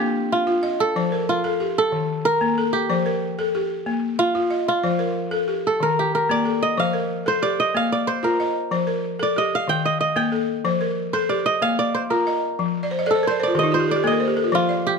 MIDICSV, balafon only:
0, 0, Header, 1, 2, 480
1, 0, Start_track
1, 0, Tempo, 323102
1, 1417, Time_signature, 12, 3, 24, 8
1, 22268, End_track
2, 0, Start_track
2, 0, Title_t, "Balafon"
2, 0, Program_c, 0, 12
2, 0, Note_on_c, 0, 58, 79
2, 0, Note_on_c, 0, 67, 65
2, 221, Note_off_c, 0, 67, 0
2, 458, Note_off_c, 0, 58, 0
2, 698, Note_on_c, 0, 65, 85
2, 934, Note_on_c, 0, 75, 73
2, 1177, Note_off_c, 0, 65, 0
2, 1425, Note_on_c, 0, 53, 84
2, 1430, Note_on_c, 0, 72, 67
2, 1656, Note_off_c, 0, 75, 0
2, 1664, Note_on_c, 0, 70, 64
2, 1901, Note_off_c, 0, 53, 0
2, 2143, Note_on_c, 0, 69, 76
2, 2144, Note_off_c, 0, 72, 0
2, 2381, Note_off_c, 0, 70, 0
2, 2381, Note_on_c, 0, 67, 68
2, 2855, Note_on_c, 0, 51, 77
2, 2861, Note_off_c, 0, 69, 0
2, 3100, Note_off_c, 0, 67, 0
2, 3337, Note_off_c, 0, 51, 0
2, 3581, Note_on_c, 0, 58, 87
2, 3830, Note_on_c, 0, 69, 72
2, 4060, Note_off_c, 0, 58, 0
2, 4301, Note_on_c, 0, 53, 86
2, 4303, Note_on_c, 0, 72, 74
2, 4543, Note_on_c, 0, 70, 63
2, 4544, Note_off_c, 0, 69, 0
2, 4780, Note_off_c, 0, 53, 0
2, 5021, Note_off_c, 0, 72, 0
2, 5031, Note_on_c, 0, 69, 81
2, 5261, Note_off_c, 0, 70, 0
2, 5271, Note_on_c, 0, 67, 71
2, 5738, Note_on_c, 0, 58, 80
2, 5747, Note_off_c, 0, 69, 0
2, 5985, Note_off_c, 0, 67, 0
2, 6219, Note_off_c, 0, 58, 0
2, 6462, Note_on_c, 0, 65, 93
2, 6693, Note_on_c, 0, 75, 68
2, 6941, Note_off_c, 0, 65, 0
2, 7183, Note_on_c, 0, 53, 86
2, 7183, Note_on_c, 0, 72, 73
2, 7414, Note_on_c, 0, 70, 65
2, 7417, Note_off_c, 0, 75, 0
2, 7662, Note_off_c, 0, 53, 0
2, 7893, Note_on_c, 0, 69, 80
2, 7902, Note_off_c, 0, 72, 0
2, 8137, Note_on_c, 0, 67, 62
2, 8138, Note_off_c, 0, 70, 0
2, 8377, Note_off_c, 0, 69, 0
2, 8622, Note_on_c, 0, 51, 76
2, 8859, Note_off_c, 0, 67, 0
2, 9101, Note_off_c, 0, 51, 0
2, 9351, Note_on_c, 0, 58, 85
2, 9586, Note_on_c, 0, 69, 63
2, 9826, Note_off_c, 0, 58, 0
2, 10063, Note_on_c, 0, 72, 71
2, 10066, Note_on_c, 0, 53, 83
2, 10300, Note_on_c, 0, 70, 62
2, 10304, Note_off_c, 0, 69, 0
2, 10544, Note_off_c, 0, 53, 0
2, 10782, Note_off_c, 0, 72, 0
2, 10787, Note_on_c, 0, 69, 80
2, 11021, Note_off_c, 0, 70, 0
2, 11025, Note_on_c, 0, 67, 68
2, 11264, Note_off_c, 0, 69, 0
2, 11507, Note_on_c, 0, 58, 79
2, 11744, Note_off_c, 0, 67, 0
2, 11984, Note_off_c, 0, 58, 0
2, 12224, Note_on_c, 0, 65, 91
2, 12478, Note_on_c, 0, 75, 73
2, 12703, Note_off_c, 0, 65, 0
2, 12942, Note_on_c, 0, 53, 78
2, 12948, Note_on_c, 0, 72, 67
2, 13177, Note_on_c, 0, 70, 62
2, 13190, Note_off_c, 0, 75, 0
2, 13422, Note_off_c, 0, 53, 0
2, 13659, Note_on_c, 0, 69, 78
2, 13666, Note_off_c, 0, 72, 0
2, 13900, Note_off_c, 0, 70, 0
2, 13911, Note_on_c, 0, 67, 67
2, 14375, Note_on_c, 0, 51, 77
2, 14382, Note_off_c, 0, 69, 0
2, 14627, Note_off_c, 0, 67, 0
2, 14859, Note_off_c, 0, 51, 0
2, 15092, Note_on_c, 0, 58, 88
2, 15332, Note_on_c, 0, 69, 68
2, 15577, Note_off_c, 0, 58, 0
2, 15815, Note_on_c, 0, 53, 86
2, 15818, Note_on_c, 0, 72, 75
2, 16056, Note_on_c, 0, 70, 63
2, 16057, Note_off_c, 0, 69, 0
2, 16299, Note_off_c, 0, 53, 0
2, 16540, Note_off_c, 0, 72, 0
2, 16543, Note_on_c, 0, 69, 80
2, 16778, Note_on_c, 0, 67, 69
2, 16779, Note_off_c, 0, 70, 0
2, 17023, Note_off_c, 0, 69, 0
2, 17258, Note_on_c, 0, 58, 77
2, 17500, Note_off_c, 0, 67, 0
2, 17740, Note_off_c, 0, 58, 0
2, 17981, Note_on_c, 0, 65, 80
2, 18227, Note_on_c, 0, 75, 75
2, 18462, Note_off_c, 0, 65, 0
2, 18704, Note_on_c, 0, 53, 86
2, 18944, Note_off_c, 0, 75, 0
2, 19061, Note_on_c, 0, 74, 71
2, 19181, Note_on_c, 0, 72, 67
2, 19183, Note_off_c, 0, 53, 0
2, 19285, Note_off_c, 0, 74, 0
2, 19296, Note_on_c, 0, 75, 66
2, 19405, Note_off_c, 0, 72, 0
2, 19406, Note_on_c, 0, 74, 68
2, 19412, Note_on_c, 0, 69, 79
2, 19522, Note_off_c, 0, 75, 0
2, 19539, Note_on_c, 0, 72, 68
2, 19636, Note_off_c, 0, 74, 0
2, 19656, Note_on_c, 0, 70, 69
2, 19764, Note_off_c, 0, 72, 0
2, 19764, Note_on_c, 0, 74, 71
2, 19882, Note_off_c, 0, 70, 0
2, 19897, Note_off_c, 0, 69, 0
2, 19902, Note_on_c, 0, 72, 67
2, 19995, Note_off_c, 0, 74, 0
2, 20020, Note_on_c, 0, 65, 64
2, 20125, Note_off_c, 0, 72, 0
2, 20127, Note_on_c, 0, 51, 80
2, 20129, Note_on_c, 0, 67, 63
2, 20244, Note_off_c, 0, 65, 0
2, 20253, Note_on_c, 0, 63, 68
2, 20358, Note_off_c, 0, 67, 0
2, 20382, Note_on_c, 0, 65, 72
2, 20480, Note_off_c, 0, 63, 0
2, 20496, Note_on_c, 0, 67, 71
2, 20605, Note_off_c, 0, 65, 0
2, 20614, Note_off_c, 0, 51, 0
2, 20616, Note_on_c, 0, 69, 63
2, 20718, Note_off_c, 0, 67, 0
2, 20736, Note_on_c, 0, 67, 66
2, 20836, Note_off_c, 0, 69, 0
2, 20854, Note_on_c, 0, 69, 70
2, 20855, Note_on_c, 0, 58, 88
2, 20962, Note_off_c, 0, 67, 0
2, 20974, Note_on_c, 0, 70, 70
2, 21080, Note_off_c, 0, 69, 0
2, 21094, Note_on_c, 0, 72, 71
2, 21201, Note_off_c, 0, 70, 0
2, 21208, Note_on_c, 0, 67, 72
2, 21320, Note_off_c, 0, 72, 0
2, 21338, Note_off_c, 0, 58, 0
2, 21345, Note_on_c, 0, 69, 69
2, 21437, Note_off_c, 0, 67, 0
2, 21454, Note_on_c, 0, 65, 64
2, 21566, Note_off_c, 0, 69, 0
2, 21571, Note_on_c, 0, 53, 87
2, 21574, Note_on_c, 0, 72, 75
2, 21680, Note_off_c, 0, 65, 0
2, 21823, Note_on_c, 0, 74, 62
2, 22055, Note_off_c, 0, 53, 0
2, 22268, Note_off_c, 0, 72, 0
2, 22268, Note_off_c, 0, 74, 0
2, 22268, End_track
0, 0, End_of_file